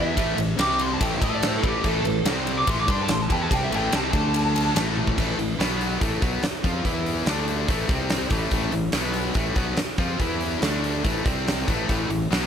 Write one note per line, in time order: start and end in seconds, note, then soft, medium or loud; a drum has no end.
0.00 0.16 E2 medium
0.00 0.15 E3 medium
0.00 0.15 B3 medium
0.00 0.16 E4 loud
0.00 0.38 E5 loud
0.15 0.37 A1 medium
0.15 0.36 A2 medium
0.15 0.36 E3 loud
0.15 0.37 A3 loud
0.15 kick medium
0.15 ride medium
0.37 0.57 A1 medium
0.37 0.54 A2 medium
0.37 0.54 E3 medium
0.37 ride medium
0.57 0.97 C2 medium
0.57 0.99 C3 medium
0.57 1.00 G3 medium
0.57 1.00 C4 loud
0.57 0.80 D6 loud
0.57 snare loud
0.57 ride loud
0.71 snare soft
0.79 0.91 C6 medium
0.79 ride medium
0.94 1.03 A5 medium
1.00 1.20 A1 loud
1.00 1.21 A2 loud
1.00 1.22 E3 loud
1.00 1.22 A3 loud
1.00 1.14 G5 loud
1.00 kick loud
1.00 ride loud
1.14 1.24 E5 loud
1.22 1.60 A2 loud
1.22 1.62 A3 medium
1.22 1.63 E4 loud
1.22 1.63 A4 loud
1.22 1.33 D#5 medium
1.22 kick loud
1.22 ride medium
1.34 1.43 D5 loud
1.43 snare loud
1.43 ride loud
1.47 1.57 C5 loud
1.55 1.65 A4 loud
1.55 snare soft
1.63 1.83 A1 medium
1.63 1.82 A2 medium
1.63 1.83 E3 loud
1.63 1.83 A3 loud
1.63 1.84 G4 loud
1.63 kick loud
1.63 ride medium
1.83 2.03 A1 loud
1.83 2.03 A2 medium
1.83 2.04 E3 loud
1.83 2.04 A3 loud
1.83 2.26 A4 loud
1.83 kick medium
1.83 crash medium
2.04 2.24 A1 medium
2.04 2.21 A2 medium
2.04 2.21 E3 medium
2.04 ride medium
2.25 2.64 C2 loud
2.25 2.66 C3 medium
2.25 2.67 G3 medium
2.25 2.67 C4 loud
2.25 snare loud
2.25 ride loud
2.38 snare soft
2.47 ride medium
2.58 2.68 D6 loud
2.67 2.87 A1 medium
2.67 2.87 A2 medium
2.67 2.87 E3 medium
2.67 2.88 A3 loud
2.67 2.79 C6 loud
2.67 kick loud
2.67 ride loud
2.80 2.89 D6 loud
2.88 3.07 G2 medium
2.88 3.08 G3 medium
2.88 3.09 D4 loud
2.88 3.09 G4 loud
2.88 2.99 C6 medium
2.88 kick loud
2.88 ride medium
3.03 3.11 A5 loud
3.08 3.28 A1 medium
3.08 3.26 A2 medium
3.08 3.26 E3 medium
3.08 3.22 C6 loud
3.08 snare loud
3.08 ride loud
3.20 3.32 A5 loud
3.20 snare soft
3.30 3.49 E2 loud
3.30 3.50 E3 loud
3.30 3.50 B3 loud
3.30 3.50 E4 loud
3.30 3.42 G5 loud
3.30 kick medium
3.30 ride medium
3.42 3.51 A5 medium
3.50 3.70 C2 loud
3.50 3.71 C3 medium
3.50 3.71 G3 loud
3.50 3.71 C4 medium
3.50 3.64 G5 loud
3.50 kick loud
3.50 ride medium
3.64 3.75 E5 loud
3.71 3.91 A1 loud
3.71 3.91 A2 medium
3.71 3.92 E3 loud
3.71 3.92 A3 loud
3.71 3.93 G5 medium
3.71 ride medium
3.92 4.12 C2 medium
3.92 4.13 C3 medium
3.92 4.13 G3 medium
3.92 4.14 C4 medium
3.92 snare loud
3.92 ride loud
3.96 4.75 A5 loud
4.13 4.72 D2 loud
4.13 4.75 D3 loud
4.13 4.75 A3 loud
4.13 4.75 D4 loud
4.13 kick loud
4.13 ride medium
4.34 ride loud
4.56 ride medium
4.75 5.14 A1 medium
4.75 5.16 A2 loud
4.75 5.16 E3 medium
4.75 5.17 A3 loud
4.75 snare loud
4.75 ride loud
4.97 high tom medium
5.07 kick medium
5.17 5.37 A1 medium
5.17 5.37 A2 medium
5.17 5.38 E3 medium
5.17 5.38 A3 loud
5.17 kick loud
5.17 crash medium
5.38 5.58 A1 medium
5.38 5.55 A2 medium
5.38 5.55 E3 medium
5.38 open hi-hat soft
5.59 5.98 B1 medium
5.59 6.00 B2 medium
5.59 6.01 F#3 medium
5.59 6.01 B3 loud
5.59 snare loud
5.59 open hi-hat medium
5.81 open hi-hat medium
6.01 6.21 A1 medium
6.01 6.21 A2 loud
6.01 6.21 E3 loud
6.01 6.22 A3 loud
6.01 kick loud
6.01 open hi-hat medium
6.22 6.41 B1 medium
6.22 6.42 B2 medium
6.22 6.43 F#3 loud
6.22 6.43 B3 medium
6.22 kick loud
6.22 open hi-hat medium
6.43 muted fingered electric bass stroke soft
6.43 muted distorted electric guitar stroke medium
6.43 snare loud
6.43 open hi-hat medium
6.64 6.83 F2 medium
6.64 6.85 F3 medium
6.64 6.86 C4 loud
6.64 6.86 F4 loud
6.64 kick loud
6.64 open hi-hat medium
6.85 7.24 E2 medium
6.85 7.26 E3 medium
6.85 7.26 B3 medium
6.85 7.26 E4 medium
6.85 kick medium
6.85 open hi-hat medium
7.06 open hi-hat medium
7.26 7.65 D2 loud
7.26 7.68 D3 medium
7.26 7.68 A3 medium
7.26 7.68 D4 loud
7.26 snare loud
7.26 open hi-hat medium
7.48 open hi-hat medium
7.68 7.88 A1 medium
7.68 7.88 A2 medium
7.68 7.89 E3 loud
7.68 7.89 A3 loud
7.68 kick loud
7.68 open hi-hat medium
7.89 8.28 C2 medium
7.89 8.30 C3 medium
7.89 8.31 G3 loud
7.89 8.31 C4 loud
7.89 kick loud
7.89 open hi-hat medium
8.10 snare loud
8.10 open hi-hat medium
8.30 8.50 A1 medium
8.30 8.51 A2 medium
8.30 8.51 E3 medium
8.30 8.51 A3 loud
8.30 kick loud
8.30 open hi-hat medium
8.51 8.71 A1 medium
8.51 8.71 A2 medium
8.51 8.72 E3 medium
8.51 8.73 A3 medium
8.51 kick medium
8.51 open hi-hat medium
8.72 8.92 A1 medium
8.72 8.90 A2 medium
8.72 8.90 E3 medium
8.72 open hi-hat medium
8.92 9.33 B1 loud
8.92 9.34 B2 loud
8.92 9.35 F#3 medium
8.92 9.35 B3 loud
8.92 snare loud
8.92 open hi-hat medium
9.14 open hi-hat medium
9.34 9.55 A1 medium
9.34 9.56 A2 loud
9.34 9.56 E3 loud
9.34 9.57 A3 loud
9.34 kick loud
9.34 open hi-hat medium
9.56 9.76 B1 medium
9.56 9.77 B2 medium
9.56 9.77 F#3 medium
9.56 9.78 B3 loud
9.56 kick loud
9.56 open hi-hat medium
9.77 muted fingered electric bass stroke soft
9.77 muted distorted electric guitar stroke medium
9.77 snare loud
9.77 open hi-hat medium
9.98 10.18 F2 medium
9.98 10.19 F3 medium
9.98 10.20 C4 medium
9.98 10.20 F4 loud
9.98 kick loud
9.98 open hi-hat soft
10.20 10.59 E2 medium
10.20 10.61 E3 medium
10.20 10.62 B3 medium
10.20 10.62 E4 loud
10.20 kick medium
10.20 open hi-hat medium
10.41 open hi-hat medium
10.61 11.01 D2 medium
10.61 11.02 D3 medium
10.61 11.03 A3 loud
10.61 11.04 D4 loud
10.61 snare loud
10.61 open hi-hat medium
10.84 open hi-hat medium
11.03 11.24 A1 medium
11.03 11.24 A2 medium
11.03 11.24 E3 loud
11.03 11.25 A3 loud
11.03 kick medium
11.03 open hi-hat medium
11.25 11.65 C2 medium
11.25 11.67 C3 medium
11.25 11.67 G3 medium
11.25 11.67 C4 medium
11.25 kick loud
11.25 open hi-hat medium
11.48 snare loud
11.48 open hi-hat medium
11.67 11.87 A1 medium
11.67 11.87 A2 medium
11.67 11.88 E3 medium
11.67 11.88 A3 loud
11.67 kick loud
11.67 open hi-hat medium
11.89 12.08 A1 medium
11.89 12.08 A2 loud
11.89 12.08 E3 medium
11.89 12.10 A3 loud
11.89 kick medium
11.89 open hi-hat medium
12.09 12.29 A1 medium
12.09 12.26 A2 medium
12.09 12.26 E3 medium
12.09 open hi-hat medium
12.30 12.47 B1 medium
12.30 12.47 B2 medium
12.30 12.47 F#3 medium
12.30 12.47 B3 medium
12.30 snare loud
12.30 open hi-hat medium